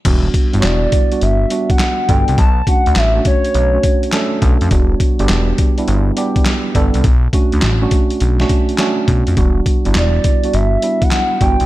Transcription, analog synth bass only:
X:1
M:4/4
L:1/16
Q:"Swing 16ths" 1/4=103
K:Edor
V:1 name="Analog synth bass" clef=bass
E,,,2 z G,,, E,,,2 z2 G,,,2 z4 G,,, =C,, | B,,,2 z D,, A,,,2 z2 B,,,2 z4 B,,, =F,, | E,,,2 z G,,, E,,,2 z2 G,,,2 z4 G,,, =C,, | B,,,2 z D,, A,,,2 z2 B,,,2 z4 B,,, =F,, |
E,,,2 z G,,, E,,,2 z2 G,,,2 z4 G,,, =C,, |]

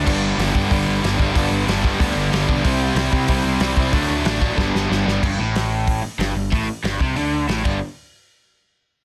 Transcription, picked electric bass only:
X:1
M:4/4
L:1/8
Q:1/4=186
K:G
V:1 name="Picked electric bass" clef=bass
G,,,2 G,,, G,, G,,, G,,, G,,, G,,, | G,,, G,,, G,,,2 D,, G,,, G,,, B,,, | C,,2 C,, C, C,, C,, C,, C,, | D,, D,, A,,,2 G,,, G,,, G,,, G,,, |
G,,, A,,,4 z G,,, G,,, | A,,, z G,,, C,, D,,2 A,,, G,,, | z8 |]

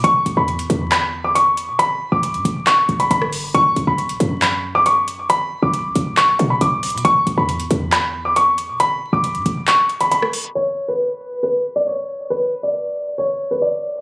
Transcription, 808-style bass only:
X:1
M:4/4
L:1/16
Q:1/4=137
K:Edor
V:1 name="808-style bass" clef=bass
E,,,2 E,,, E,,3 E,,8- E,, B,,- | B,,2 z E,,,2 G,, E,,,4 E,,,2 G,,,4 | B,,,2 B,,, B,,,3 F,,8- F,,2- | F,,2 z B,,,2 C,, B,,,3 ^A,,, B,,2 B,,,3 B,, |
E,,,2 E,,, E,,3 E,,8- E,, B,,- | B,,2 z E,,,2 G,, E,,,2 z8 | z16 | z16 |]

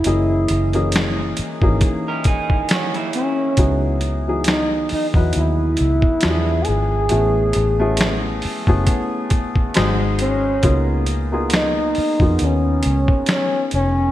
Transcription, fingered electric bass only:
X:1
M:4/4
L:1/16
Q:"Swing 16ths" 1/4=68
K:C#m
V:1 name="Fingered electric bass" clef=bass
F,,,2 F,,,4 z G,,, z8 | C,,6 z E,, D,,2 C,, z E,,2 G,,,2 | A,,,2 A,,,4 z F,,, z4 G,,,4 | C,,6 z ^E,, D,,2 C,, z3 ^E,,,2 |]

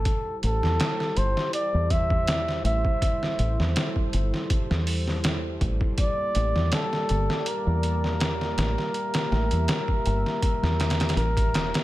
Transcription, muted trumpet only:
X:1
M:4/4
L:1/8
Q:"Swing 16ths" 1/4=81
K:Aphr
V:1 name="Muted trumpet"
A A2 c d e2 e- | e3 z4 z | d2 A2 B4- | B6 B2 |]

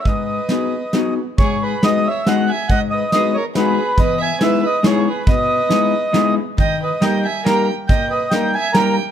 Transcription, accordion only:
X:1
M:3/4
L:1/8
Q:"Swing" 1/4=139
K:G#m
V:1 name="Accordion"
d4- d z | c B d e f g | f d d c B2 | d g e d c B |
d4- d z | =g d g ^g A z | =g d g ^g A z |]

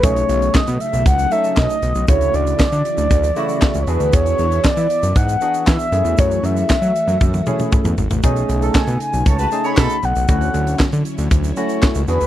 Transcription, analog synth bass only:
X:1
M:4/4
L:1/16
Q:1/4=117
K:Bdor
V:1 name="Analog synth bass" clef=bass
B,,,2 B,,,2 B,, B,, z B,,, C,,2 z2 B,, z B,,, B,,, | D,,2 D,,2 D, D, z D,, D,,2 z3 C,, E,, D,, | E,,2 E,,2 E, E, z F,, G,,2 z2 E, z F,, E,, | F,,2 F,,2 F, F, z F,, F,,2 z3 E,, G,,, A,,, |
B,,,2 B,,,2 B,, B,, z B,,, C,,2 z2 B,, z B,,, B,,, | D,,2 D,,2 D, D, z D,, D,,2 z3 C,, E,, D,, |]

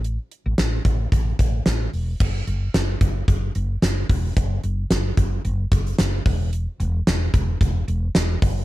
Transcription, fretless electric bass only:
X:1
M:4/4
L:1/16
Q:"Swing 16ths" 1/4=111
K:F#m
V:1 name="Fretless electric bass" clef=bass
A,,,2 z A,,, A,,,2 A,,,2 A,,,2 A,,,2 A,,,2 E,,,2 | F,,,2 F,,,2 F,,,2 F,,,2 F,,,2 F,,,2 F,,,2 E,,,2 | F,,,2 F,,,2 F,,,2 F,,,2 F,,,2 F,,,2 F,,,2 E,,,2- | E,,,2 E,,,2 E,,,2 E,,,2 E,,,2 E,,,2 E,,,2 F,,,2 |]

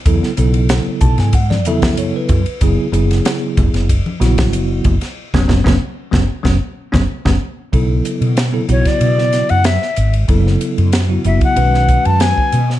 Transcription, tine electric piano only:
X:1
M:4/4
L:1/16
Q:1/4=94
K:F#m
V:1 name="Tine electric piano"
z6 a g f d e2 c B3 | z16 | z [F,B,C] [F,B,C] [F,B,C] z2 [F,B,C] z [F,B,C] z2 [F,B,C] z [F,B,C] z2 | z16 |
z16 |]
V:2 name="Tine electric piano"
[C,F,B,EA]2 [C,F,B,EA]6 z2 [C,F,B,EA]4- [C,F,B,EA] z | [C,F,B,EG]2 [C,F,B,EG]6 z2 [C,F,B,EF]4- [C,F,B,EF] z | z16 | [C,F,B,EA]4 z [C,F,B,EA] [C,F,B,EF]6 z4 |
[C,F,B,EA]4 z [C,F,B,EF] [C,F,B,EF]2 [^D,G,CFB]6 z2 |]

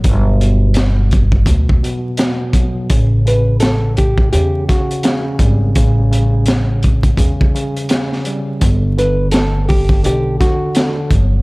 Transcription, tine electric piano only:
X:1
M:4/4
L:1/8
Q:"Swing 16ths" 1/4=84
K:Amix
V:1 name="Tine electric piano" clef=bass
[B,,F,] B,,3 B,, B,, B,, F, | C, C,3 C, C, C, G, | C, C,3 C, C, C, G, | D, D,3 D, D, D, F, |]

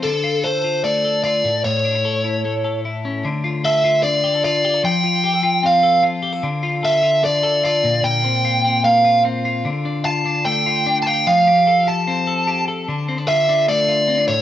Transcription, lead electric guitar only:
X:1
M:4/4
L:1/16
Q:1/4=150
K:Dm
V:1 name="Lead electric guitar"
A4 c4 d4 d4 | ^c12 z4 | z4 e4 d4 d4 | g8 f4 z4 |
z4 e4 d4 d4 | g8 f4 z4 | z4 a4 g4- g3/2 a/2 g2 | f6 a8 z2 |
z4 e4 d6 ^c2 |]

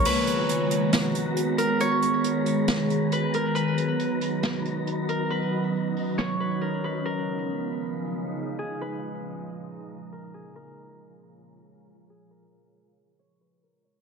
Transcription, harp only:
X:1
M:4/4
L:1/8
Q:1/4=137
K:G#dor
V:1 name="Harp"
B2 z4 z A | c6 B A | B2 z4 z A | B4 c B A B |
A2 z4 z G | B6 A G | A2 z4 z G | A4 c B A c |]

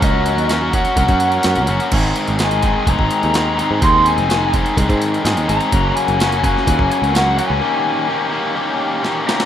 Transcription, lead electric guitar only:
X:1
M:4/4
L:1/8
Q:1/4=127
K:Abmix
V:1 name="Lead electric guitar"
e2 z g4 z | z2 a2 b4 | c' a2 z4 b- | b a2 a2 a g a- |
a6 z b |]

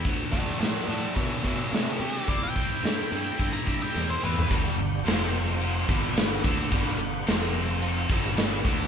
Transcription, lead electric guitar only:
X:1
M:4/4
L:1/16
Q:1/4=108
K:Clyd
V:1 name="Lead electric guitar"
z2 [D_B]2 [DB]2 [DB]2 [A,=F]2 [A,F]2 [A,F]2 G2 | d g8 _b2 g2 c =B2 | [K:Gmix] z16 | z16 |]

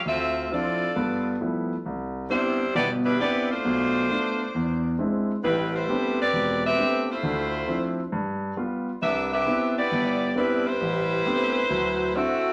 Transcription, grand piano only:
X:1
M:4/4
L:1/8
Q:"Swing" 1/4=134
K:C
V:1 name="Grand piano"
D,,2 [F,CDE] z [G,,B,]2 [F,G,A,B,E] z | C,,2 [B,CDE] z [G,,,B,,]2 [B,CDE] z | [B,,,B,,]2 [A,B,D] z E,,2 [^G,^B,DE] z | [K:Am] [A,,,A,,]2 [A,B,CDG] z E,,,2 [A,B,CDG] z |
[D,,D,]2 [F,CDE] z G,,2 [G,B,F] z | C,,2 [B,CDE] z G,,,2 [B,CDE] z | A,,,2 [A,B,CDG] z [D,,^F,]2 [CDE^F] z |]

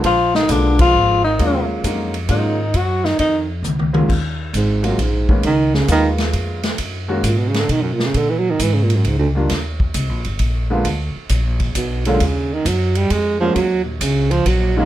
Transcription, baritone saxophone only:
X:1
M:3/4
L:1/16
Q:"Swing" 1/4=133
K:Ebm
V:1 name="Baritone saxophone" clef=bass
F,2 E,2 =D,2 F,4 E,2- | E,2 z6 E,4 | G,2 E,2 E,2 z6 | z4 A,,2 G,,2 A,,2 z2 |
E,2 D,2 E,2 z6 | z4 B,, C, D, =D, E, G,, B,, _D, | =D, _F, G, E, F, ^C, B,, G,, A,, =D,, z2 | z12 |
z8 C,2 =D,2 | D,2 E,2 G,2 =G,2 A,2 F,2 | G,2 B,,2 D,2 F,2 G,2 E,2 |]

